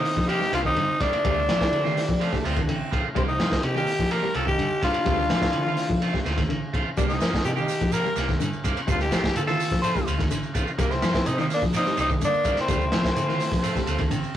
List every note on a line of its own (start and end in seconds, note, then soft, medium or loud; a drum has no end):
0.00 0.13 D#3 medium
0.00 0.32 C4 medium
0.00 0.30 D#4 loud
0.05 open hi-hat medium
0.16 0.37 F3 medium
0.16 kick medium
0.28 0.43 D#3 medium
0.28 0.44 A#3 medium
0.28 0.44 C4 medium
0.28 0.53 D#4 loud
0.28 0.53 G4 loud
0.28 0.44 G4 medium
0.28 ride bell medium
0.40 0.60 G3 medium
0.40 snare soft
0.52 0.75 C2 medium
0.52 0.67 D#3 medium
0.52 0.68 A#3 medium
0.52 0.68 C4 medium
0.52 0.59 D4 medium
0.52 0.60 F4 medium
0.52 0.68 G4 medium
0.52 snare soft
0.52 ride bell medium
0.64 0.74 D#3 medium
0.64 1.03 C4 medium
0.64 1.03 D#4 loud
0.64 kick medium
0.76 0.88 G2 loud
0.76 0.97 D3 loud
0.76 ride bell medium
1.00 1.12 G2 medium
1.00 1.15 D#3 medium
1.00 2.45 A3 medium
1.00 1.16 A#3 medium
1.00 1.16 C4 medium
1.00 2.45 D4 loud
1.00 1.16 G4 medium
1.00 kick medium
1.00 snare soft
1.00 ride bell medium
1.13 ride bell medium
1.24 1.47 D2 loud
1.24 1.45 G3 loud
1.24 1.39 A3 medium
1.24 1.40 C4 medium
1.24 1.40 F4 medium
1.24 muted clean electric guitar stroke medium
1.24 kick loud
1.24 ride bell medium
1.48 1.60 A1 medium
1.48 1.68 F3 medium
1.48 1.63 F3 medium
1.48 1.60 F3 medium
1.48 1.63 A3 medium
1.48 1.64 C4 medium
1.48 1.64 F4 medium
1.48 snare medium
1.48 ride bell medium
1.61 muted fingered electric bass stroke soft
1.61 kick medium
1.61 snare medium
1.72 1.94 D3 loud
1.72 2.23 G3 medium
1.72 ride bell medium
1.84 2.05 D#3 medium
1.84 1.99 A3 medium
1.84 1.99 C4 medium
1.84 1.99 F4 medium
1.84 snare soft
1.97 snare soft
1.97 open hi-hat medium
2.09 2.28 F3 medium
2.09 kick medium
2.20 2.35 F3 medium
2.20 2.35 A3 medium
2.20 2.46 A3 loud
2.20 2.35 C4 medium
2.20 2.35 F4 medium
2.20 ride bell medium
2.33 2.52 G3 medium
2.33 kick medium
2.33 snare soft
2.44 2.66 D2 loud
2.44 2.59 F3 medium
2.44 2.59 A3 medium
2.44 2.61 C4 loud
2.44 2.59 C4 medium
2.44 2.59 F4 medium
2.44 snare soft
2.44 ride bell medium
2.56 2.66 D#3 medium
2.56 kick medium
2.56 ride bell medium
2.62 2.70 D4 medium
2.68 2.79 A1 loud
2.68 2.88 D3 medium
2.68 3.04 C4 loud
2.68 ride bell medium
2.91 3.03 A1 medium
2.91 3.06 F3 medium
2.91 3.06 A3 medium
2.91 3.07 C4 medium
2.91 3.07 F4 medium
2.91 kick medium
2.91 ride bell medium
3.15 3.38 C2 loud
3.15 3.30 D#3 medium
3.15 3.35 G3 loud
3.15 3.23 G3 medium
3.15 3.30 A#3 medium
3.15 3.30 C4 medium
3.15 3.23 C4 loud
3.15 3.30 G4 medium
3.15 kick loud
3.15 ride bell medium
3.28 3.66 C4 medium
3.28 3.66 D#4 loud
3.39 3.51 G2 medium
3.39 3.54 D#3 medium
3.39 3.59 F3 medium
3.39 3.54 A#3 medium
3.39 3.54 C4 medium
3.39 snare medium
3.39 ride bell medium
3.52 muted fingered electric bass stroke soft
3.52 kick medium
3.52 snare medium
3.63 3.85 C3 loud
3.63 3.76 D#4 medium
3.63 3.76 G4 medium
3.63 ride bell medium
3.75 3.95 D#3 medium
3.75 3.90 A#3 medium
3.75 3.90 C4 medium
3.75 4.15 D#4 medium
3.75 3.90 G4 medium
3.75 4.13 G4 loud
3.75 snare soft
3.87 open hi-hat medium
3.99 4.19 F3 medium
3.99 kick medium
3.99 snare soft
4.11 4.26 D#3 medium
4.11 4.26 A#3 medium
4.11 4.26 C4 medium
4.11 4.26 G4 medium
4.11 4.36 G4 loud
4.11 4.35 A#4 loud
4.11 ride bell medium
4.23 4.43 G3 medium
4.34 4.57 C2 medium
4.34 4.49 D#3 medium
4.34 4.49 A#3 medium
4.34 4.50 C4 medium
4.34 4.47 F4 medium
4.34 4.50 G4 medium
4.34 4.47 A4 loud
4.34 ride bell medium
4.46 4.56 D#3 medium
4.46 4.82 D#4 medium
4.46 4.81 G4 loud
4.46 kick medium
4.58 4.70 G2 loud
4.58 4.78 D3 medium
4.58 ride bell medium
4.82 4.94 G2 medium
4.82 4.97 D#3 medium
4.82 4.97 A#3 medium
4.82 4.97 C4 medium
4.82 6.23 D4 loud
4.82 6.23 F4 loud
4.82 4.98 G4 medium
4.82 kick medium
4.82 snare soft
4.82 ride bell medium
4.94 ride bell medium
5.05 5.28 D2 loud
5.05 5.25 G3 loud
5.05 5.21 A3 medium
5.05 5.21 C4 medium
5.05 5.21 F4 medium
5.05 kick loud
5.05 snare soft
5.05 ride bell medium
5.29 5.41 A1 medium
5.29 5.50 F3 medium
5.29 5.44 A3 medium
5.29 5.45 C4 medium
5.29 5.45 F4 medium
5.29 snare medium
5.29 ride bell medium
5.42 muted fingered electric bass stroke soft
5.42 kick medium
5.42 snare medium
5.53 5.76 D3 loud
5.53 ride bell medium
5.66 5.86 D#3 medium
5.66 5.81 C4 medium
5.66 5.81 F4 medium
5.77 snare soft
5.77 open hi-hat medium
5.90 6.10 F3 medium
5.90 kick medium
6.02 6.16 A3 medium
6.02 6.17 C4 medium
6.02 6.17 F4 medium
6.02 ride bell medium
6.13 6.33 G3 medium
6.13 kick medium
6.13 snare soft
6.25 6.48 D2 medium
6.25 6.40 A3 medium
6.25 6.40 C4 medium
6.25 6.41 F4 medium
6.25 snare soft
6.25 ride bell medium
6.37 6.47 D#3 medium
6.37 kick medium
6.37 snare soft
6.37 ride bell medium
6.49 6.61 A1 loud
6.49 6.69 D3 loud
6.49 ride bell medium
6.73 6.85 A1 loud
6.73 6.88 A3 medium
6.73 6.88 C4 medium
6.73 6.89 F4 medium
6.73 kick medium
6.73 ride bell medium
6.97 7.19 C2 loud
6.97 7.12 D#3 medium
6.97 7.17 G3 loud
6.97 7.12 A#3 medium
6.97 7.04 A#3 medium
6.97 7.12 C4 medium
6.97 7.03 D4 medium
6.97 7.13 G4 medium
6.97 kick loud
6.97 ride bell medium
6.97 shekere medium
7.09 7.43 C4 medium
7.09 7.42 D#4 medium
7.09 snare soft
7.09 shekere soft
7.21 7.32 G2 medium
7.21 7.35 D#3 medium
7.21 7.41 F3 medium
7.21 7.36 A#3 medium
7.21 7.36 C4 medium
7.21 7.36 G4 medium
7.21 snare medium
7.21 ride bell medium
7.21 shekere medium
7.33 kick medium
7.33 snare medium
7.33 shekere soft
7.45 7.67 C3 medium
7.45 7.52 D#4 medium
7.45 7.51 G4 medium
7.45 ride bell medium
7.45 shekere medium
7.56 7.77 D#3 medium
7.56 7.71 A#3 soft
7.56 7.71 C4 medium
7.56 7.96 D#4 medium
7.56 7.71 G4 medium
7.56 7.94 G4 loud
7.56 shekere soft
7.68 open hi-hat medium
7.68 shekere medium
7.81 8.01 F3 medium
7.81 kick medium
7.81 shekere soft
7.92 8.07 D#3 medium
7.92 8.07 A#3 medium
7.92 8.07 C4 medium
7.92 8.07 G4 medium
7.92 8.17 G4 medium
7.92 8.17 A#4 loud
7.92 ride bell medium
7.92 shekere loud
8.05 8.25 G3 medium
8.05 shekere soft
8.16 8.38 C2 medium
8.16 8.30 D#3 medium
8.16 8.31 A#3 medium
8.16 8.31 C4 medium
8.16 8.31 G4 medium
8.16 snare soft
8.16 ride bell medium
8.16 shekere medium
8.28 8.38 D#3 medium
8.28 kick medium
8.28 snare soft
8.28 shekere soft
8.40 8.52 G2 loud
8.40 8.60 D3 medium
8.40 ride bell medium
8.40 shekere loud
8.53 shekere soft
8.64 8.75 G2 medium
8.64 8.78 D#3 medium
8.64 8.79 A#3 medium
8.64 8.79 C4 medium
8.64 8.79 G4 medium
8.64 kick medium
8.64 ride bell medium
8.64 shekere medium
8.77 ride bell medium
8.77 shekere soft
8.87 9.10 D2 loud
8.87 9.07 G3 medium
8.87 9.02 A3 medium
8.87 9.02 C4 medium
8.87 9.00 D4 medium
8.87 9.03 F4 medium
8.87 9.01 F4 medium
8.87 kick loud
8.87 ride bell medium
8.87 shekere loud
9.00 9.35 D#4 medium
9.00 9.34 G4 loud
9.00 snare soft
9.00 shekere soft
9.11 9.23 A1 medium
9.11 9.31 F3 medium
9.11 9.26 A3 medium
9.11 9.26 C4 medium
9.11 9.27 F4 medium
9.11 snare medium
9.11 ride bell medium
9.11 shekere medium
9.24 muted fingered electric bass stroke soft
9.24 kick medium
9.24 snare medium
9.24 shekere soft
9.36 9.58 D3 medium
9.36 9.42 F4 medium
9.36 9.42 A4 medium
9.36 ride bell medium
9.36 shekere loud
9.47 9.67 D#3 medium
9.47 9.62 C4 soft
9.47 9.62 F4 medium
9.47 9.81 F4 medium
9.47 9.81 A4 loud
9.47 snare soft
9.47 shekere soft
9.60 open hi-hat medium
9.60 shekere medium
9.71 9.92 F3 medium
9.71 kick medium
9.71 snare soft
9.71 shekere soft
9.82 9.97 A3 medium
9.82 9.98 C4 medium
9.82 9.98 F4 medium
9.82 10.05 A4 medium
9.82 10.05 C5 loud
9.82 ride bell medium
9.82 shekere loud
9.96 10.15 G3 medium
9.96 kick medium
9.96 shekere soft
10.06 10.29 D2 loud
10.06 10.21 A3 medium
10.06 10.22 F4 medium
10.06 ride bell medium
10.06 shekere medium
10.19 10.29 D#3 medium
10.19 kick medium
10.19 snare soft
10.19 ride bell medium
10.19 shekere soft
10.31 10.42 A1 loud
10.31 10.51 D3 medium
10.31 ride bell medium
10.31 shekere loud
10.43 shekere soft
10.54 10.66 A1 medium
10.54 10.69 A3 medium
10.54 10.69 C4 medium
10.54 10.69 F4 medium
10.54 kick medium
10.54 ride bell medium
10.54 shekere medium
10.67 shekere soft
10.78 11.00 C2 loud
10.78 10.92 D#3 medium
10.78 10.98 G3 medium
10.78 10.94 G3 loud
10.78 10.93 A#3 medium
10.78 10.93 C4 medium
10.78 10.93 G4 medium
10.78 kick loud
10.78 snare soft
10.78 ride bell medium
10.78 shekere medium
10.91 11.30 A3 medium
10.91 11.28 C4 loud
10.91 snare soft
10.91 shekere soft
11.02 11.14 G2 medium
11.02 11.16 D#3 medium
11.02 11.22 F3 medium
11.02 11.16 A#3 medium
11.02 11.17 C4 medium
11.02 11.17 G4 medium
11.02 snare medium
11.02 ride bell medium
11.02 shekere medium
11.14 muted fingered electric bass stroke soft
11.14 kick medium
11.14 snare medium
11.14 shekere soft
11.26 11.48 C3 medium
11.26 11.39 C4 loud
11.26 11.38 D#4 loud
11.26 ride bell medium
11.26 shekere medium
11.37 11.58 D#3 medium
11.37 11.52 A#3 medium
11.37 11.52 C4 medium
11.37 11.45 C4 medium
11.37 11.52 G4 medium
11.37 snare soft
11.37 shekere soft
11.41 11.46 D#4 loud
11.50 11.63 A#3 loud
11.50 open hi-hat medium
11.50 shekere medium
11.54 11.64 D4 loud
11.62 11.82 F3 medium
11.62 kick medium
11.62 shekere soft
11.73 11.88 D#3 medium
11.73 11.88 A#3 medium
11.73 11.88 C4 medium
11.73 11.97 C4 loud
11.73 11.97 D#4 loud
11.73 11.88 G4 medium
11.73 snare soft
11.73 ride bell medium
11.73 shekere loud
11.86 12.06 G3 medium
11.86 snare soft
11.86 shekere soft
11.97 12.19 C2 medium
11.97 12.11 D#3 medium
11.97 12.12 C4 medium
11.97 12.12 G4 medium
11.97 ride bell medium
11.97 shekere medium
12.01 12.11 C4 medium
12.01 12.11 D#4 loud
12.10 12.20 D#3 medium
12.10 kick medium
12.10 shekere soft
12.21 12.32 G2 loud
12.21 12.41 D3 medium
12.21 12.56 A#3 medium
12.21 12.56 D4 loud
12.21 ride bell soft
12.21 shekere loud
12.34 shekere soft
12.44 12.56 G2 loud
12.44 12.59 D#3 medium
12.44 12.59 A#3 medium
12.44 12.59 C4 medium
12.44 12.60 G4 medium
12.44 kick medium
12.44 ride bell medium
12.44 shekere medium
12.57 14.09 C4 loud
12.57 snare soft
12.57 ride bell medium
12.57 shekere soft
12.62 14.10 A3 medium
12.67 12.90 D2 medium
12.67 12.89 G3 loud
12.67 12.82 A3 medium
12.67 12.83 C4 medium
12.67 12.83 F4 medium
12.67 kick loud
12.67 snare soft
12.67 ride bell medium
12.67 shekere medium
12.81 shekere soft
12.92 13.04 A1 loud
12.92 13.13 F3 medium
12.92 13.06 A3 medium
12.92 13.07 C4 medium
12.92 13.07 F4 medium
12.92 snare medium
12.92 ride bell medium
12.92 shekere medium
13.04 muted fingered electric bass stroke soft
13.04 kick medium
13.04 snare medium
13.04 shekere soft
13.15 13.38 D3 loud
13.15 13.64 F3 medium
13.15 ride bell medium
13.15 shekere loud
13.27 13.48 D#3 medium
13.27 13.43 C4 soft
13.27 13.42 F4 medium
13.27 snare soft
13.27 shekere soft
13.40 snare soft
13.40 open hi-hat medium
13.40 shekere medium
13.52 13.72 F3 medium
13.52 kick medium
13.52 snare soft
13.52 shekere soft
13.62 13.77 A3 medium
13.62 14.13 A3 loud
13.62 13.78 C4 medium
13.62 13.78 F4 medium
13.62 ride bell medium
13.62 shekere loud
13.76 13.96 G3 medium
13.76 kick medium
13.76 snare soft
13.76 shekere soft
13.87 14.09 D2 loud
13.87 14.02 A3 medium
13.87 14.02 C4 medium
13.87 14.02 F4 medium
13.87 ride bell medium
13.87 shekere medium
13.98 14.10 D#3 medium
13.98 kick medium
13.98 ride bell soft
13.98 shekere soft
14.10 14.22 A1 loud
14.10 14.31 D3 medium
14.10 14.37 C4 loud
14.10 ride bell medium
14.10 shekere loud
14.23 shekere soft